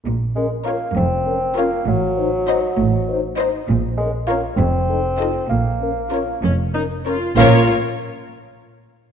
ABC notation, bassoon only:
X:1
M:6/8
L:1/8
Q:3/8=66
K:Bbm
V:1 name="Bassoon"
z A, B, C2 B, | ^F,4- F, z | z A, B, C3 | B,3 z3 |
B, z4 z |]